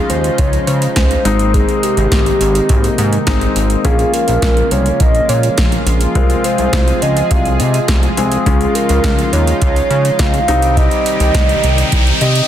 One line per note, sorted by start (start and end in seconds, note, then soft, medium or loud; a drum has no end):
0.00 1.23 C#3 medium
0.00 1.23 F3 medium
0.00 1.21 G#3 medium
0.00 1.21 C#4 medium
0.00 3.81 D#4 medium
0.00 1.21 F4 medium
0.10 0.30 D#2 medium
0.10 0.40 C5 loud
0.10 closed hi-hat medium
0.24 closed hi-hat medium
0.38 0.59 C#2 loud
0.38 0.69 C#5 loud
0.38 kick loud
0.38 closed hi-hat medium
0.53 closed hi-hat soft
0.67 0.88 C#3 loud
0.67 0.95 C5 loud
0.67 closed hi-hat medium
0.82 closed hi-hat medium
0.96 1.17 C#2 medium
0.96 1.55 C5 loud
0.96 kick loud
0.96 snare loud
0.96 closed hi-hat medium
1.11 closed hi-hat medium
1.25 1.65 G#1 loud
1.25 3.82 C3 medium
1.25 3.82 D#3 medium
1.25 3.23 G#3 medium
1.25 3.82 G#3 medium
1.25 3.82 A#3 medium
1.25 3.23 C4 medium
1.25 3.23 D#4 medium
1.25 closed hi-hat medium
1.39 closed hi-hat medium
1.54 1.85 G#4 loud
1.54 kick loud
1.54 closed hi-hat medium
1.69 closed hi-hat soft
1.83 3.56 G4 loud
1.83 closed hi-hat medium
1.97 2.07 G#1 loud
1.97 closed hi-hat medium
2.12 2.32 G#1 loud
2.12 kick loud
2.12 snare loud
2.12 closed hi-hat medium
2.26 closed hi-hat medium
2.41 2.61 G#1 medium
2.41 closed hi-hat medium
2.55 closed hi-hat medium
2.69 2.90 G#1 loud
2.69 kick loud
2.69 closed hi-hat medium
2.84 closed hi-hat soft
2.98 3.18 G#2 loud
2.98 closed hi-hat medium
3.13 closed hi-hat medium
3.27 3.47 G#1 medium
3.27 3.85 G#3 medium
3.27 3.85 C4 medium
3.27 3.85 D#4 medium
3.27 kick loud
3.27 snare loud
3.27 closed hi-hat medium
3.41 closed hi-hat soft
3.56 3.76 G#1 medium
3.56 closed hi-hat medium
3.70 closed hi-hat medium
3.85 4.05 A#1 loud
3.85 6.13 C#3 medium
3.85 10.44 F3 medium
3.85 10.44 G#3 medium
3.85 6.11 A#3 medium
3.85 6.13 A#3 medium
3.85 6.12 C#4 medium
3.85 6.11 F4 medium
3.85 8.42 F4 medium
3.85 4.12 G#4 medium
3.85 kick loud
3.85 closed hi-hat medium
3.99 closed hi-hat soft
4.14 4.73 A#4 loud
4.14 closed hi-hat medium
4.28 4.38 A#1 medium
4.28 closed hi-hat medium
4.42 4.63 A#1 loud
4.42 kick loud
4.42 snare loud
4.42 closed hi-hat medium
4.57 closed hi-hat medium
4.71 4.91 C2 medium
4.71 5.00 C#5 loud
4.71 closed hi-hat medium
4.86 closed hi-hat medium
5.00 5.20 A#1 loud
5.00 5.31 D#5 loud
5.00 kick loud
5.00 closed hi-hat medium
5.15 closed hi-hat soft
5.29 5.49 A#2 loud
5.29 5.58 C#5 loud
5.29 closed hi-hat medium
5.43 closed hi-hat medium
5.58 5.78 A#1 medium
5.58 kick loud
5.58 snare loud
5.58 closed hi-hat medium
5.72 closed hi-hat soft
5.86 6.07 A#1 loud
5.86 closed hi-hat medium
6.01 closed hi-hat medium
6.15 6.36 C2 loud
6.15 8.44 C3 medium
6.15 8.13 G#3 medium
6.15 8.13 C4 medium
6.15 8.13 F4 medium
6.15 8.44 G#4 medium
6.15 6.46 A#4 medium
6.15 kick loud
6.15 closed hi-hat medium
6.30 closed hi-hat soft
6.44 7.04 C5 loud
6.44 closed hi-hat medium
6.58 6.69 C2 loud
6.58 closed hi-hat medium
6.73 6.93 C2 loud
6.73 kick loud
6.73 snare loud
6.73 closed hi-hat medium
6.88 closed hi-hat medium
7.02 7.22 C#2 medium
7.02 7.33 D#5 loud
7.02 closed hi-hat medium
7.17 closed hi-hat medium
7.31 7.61 C2 loud
7.31 7.59 F5 loud
7.31 kick loud
7.31 closed hi-hat medium
7.46 closed hi-hat soft
7.60 7.80 C3 loud
7.60 7.86 D#5 medium
7.60 closed hi-hat medium
7.74 closed hi-hat medium
7.88 8.09 C2 loud
7.88 kick loud
7.88 snare loud
7.88 closed hi-hat medium
8.03 closed hi-hat soft
8.17 8.38 C2 medium
8.17 8.45 G#3 medium
8.17 8.46 C4 medium
8.17 8.46 G#4 medium
8.17 closed hi-hat medium
8.32 closed hi-hat medium
8.46 8.66 C#2 loud
8.46 10.46 C#3 medium
8.46 10.44 G#3 medium
8.46 10.44 C#4 medium
8.46 12.48 D#4 medium
8.46 10.44 F4 medium
8.46 10.46 F4 medium
8.46 8.76 G#4 medium
8.46 kick loud
8.46 closed hi-hat medium
8.46 riser medium
8.61 closed hi-hat soft
8.75 9.32 A#4 loud
8.75 closed hi-hat medium
8.89 9.00 C#2 loud
8.89 closed hi-hat medium
9.04 9.24 C#2 loud
9.04 kick loud
9.04 snare loud
9.04 closed hi-hat medium
9.19 closed hi-hat medium
9.33 9.53 D#2 medium
9.33 10.21 C#5 loud
9.33 closed hi-hat medium
9.47 closed hi-hat medium
9.62 9.82 C#2 loud
9.62 kick loud
9.62 closed hi-hat medium
9.76 closed hi-hat soft
9.90 10.11 C#3 loud
9.90 closed hi-hat medium
10.05 closed hi-hat medium
10.19 10.40 C#2 loud
10.19 10.76 F5 loud
10.19 kick loud
10.19 snare loud
10.19 closed hi-hat medium
10.34 closed hi-hat medium
10.48 10.89 C2 loud
10.48 12.48 C3 medium
10.48 12.48 D#3 medium
10.48 12.48 G3 medium
10.48 12.48 C4 medium
10.48 12.48 D#4 medium
10.48 12.48 G4 medium
10.48 closed hi-hat medium
10.62 closed hi-hat medium
10.77 12.46 D#5 loud
10.77 kick loud
10.77 closed hi-hat medium
10.91 closed hi-hat soft
11.06 closed hi-hat medium
11.20 11.30 C2 medium
11.20 closed hi-hat medium
11.35 11.55 C2 loud
11.35 kick loud
11.35 snare loud
11.35 closed hi-hat medium
11.49 closed hi-hat medium
11.64 11.84 C2 medium
11.64 closed hi-hat medium
11.78 closed hi-hat medium
11.92 12.13 C2 loud
11.92 kick loud
11.92 closed hi-hat medium
12.07 closed hi-hat soft
12.21 12.41 C3 loud
12.21 12.48 D#5 medium
12.21 closed hi-hat medium
12.35 closed hi-hat medium